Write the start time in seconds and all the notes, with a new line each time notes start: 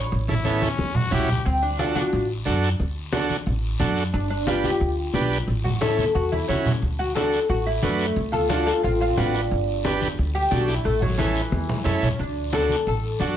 Already playing: C#5
0.11 A1, high conga, long guiro
0.28 C#4 E4 A4, high conga, low conga
0.45 B3 C#4 E4 A4, high conga, short guiro
0.62 C#4, high conga, short guiro
0.78 E2, high conga, long guiro
0.95 F#4, low conga
1.11 C#2 C#4 E4 F#4 G4, low conga, short guiro
1.29 low conga, short guiro
1.46 D2 C4, high conga, long guiro
1.62 D4
1.79 D4 F4 F#4 A4, high conga, short guiro
1.95 D4 F#4, high conga, short guiro
2.12 A1, high conga, long guiro
2.45 F#2 D4 F#4 A4, high conga, short guiro
2.63 short guiro
2.79 D2, high conga, long guiro
3.12 D4 F#4 A4, high conga, short guiro
3.29 high conga, short guiro
3.46 A1, high conga, long guiro
3.80 F#2 D4 F#4 A4, high conga, low conga, short guiro
3.96 short guiro
4.13 G1 D4, high conga, long guiro
4.30 D4
4.47 D4 F4 G4 B4, high conga, short guiro
4.64 G4, high conga, short guiro
4.80 D2, high conga, long guiro
5.14 B1 D4 G4 B4, high conga, short guiro
5.32 short guiro
5.47 A1, high conga, long guiro
5.64 F#4, low conga
5.81 C#4 E4 A4, high conga, short guiro
5.98 high conga, short guiro
6.15 E2 F#4, high conga, long guiro
6.32 E4, high conga
6.48 C#2 C#4 E4 F#4, high conga, short guiro
6.66 low conga, short guiro
6.82 D2, high conga, long guiro
6.99 F#4
7.15 D4 F#4 A4, high conga, short guiro
7.32 short guiro
7.49 A1 F#4, high conga, long guiro
7.66 E4
7.82 F#2 A3 D4 F#4 B4, high conga, short guiro
7.99 short guiro
8.16 D2, high conga, long guiro
8.32 F4 A4, high conga
8.49 D4 F4 F#4 A4, high conga, short guiro
8.66 F4 A4, short guiro
8.83 A1 C4 F4, high conga, long guiro
9.01 C4 F4
9.17 A1 C4 D4 F4 F#4 B4, high conga, low conga, short guiro
9.34 D4, short guiro
9.51 G1, high conga, long guiro
9.85 D4 G4 B4, high conga, short guiro
10.01 high conga, short guiro
10.18 D2, high conga, long guiro
10.35 G4
10.51 B1 D4 F#4 G4 A4, high conga, short guiro
10.68 E4, short guiro
10.85 A1 A3, high conga, long guiro
11.02 F#3, high conga, low conga
11.18 E3 C#4 E4 A4, high conga, short guiro
11.35 short guiro
11.52 E2, high conga, long guiro
11.69 low conga
11.84 F#2 C#4 E4 A4, low conga, short guiro
12.02 E2 C#4, low conga, short guiro
12.19 D2 D4, high conga, long guiro
12.53 D4 F#4 A4, high conga, short guiro
12.69 high conga, short guiro
12.86 A1 A4, high conga, long guiro
13.19 F#2 D4 F#4 A4, high conga, short guiro